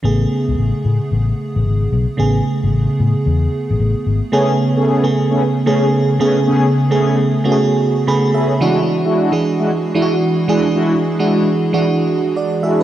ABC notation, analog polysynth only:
X:1
M:4/4
L:1/16
Q:"Swing 16ths" 1/4=112
K:A
V:1 name="Analog polysynth"
z16 | z16 | [A,B,CG] z2 [A,B,CG] [A,B,CG] z2 [A,B,CG] z2 [A,B,CG] z3 [A,B,CG] z | [A,B,CG] z2 [A,B,CG] [A,B,CG] z2 [A,B,CG] z6 [A,B,CG] z |
[G,DEF] z2 [G,DEF] [G,DEF] z2 [G,DEF] z2 [G,DEF] z3 [G,DEF] z | [G,DEF] z2 [G,DEF] [G,DEF] z2 [G,DEF] z6 [G,DEF] z |]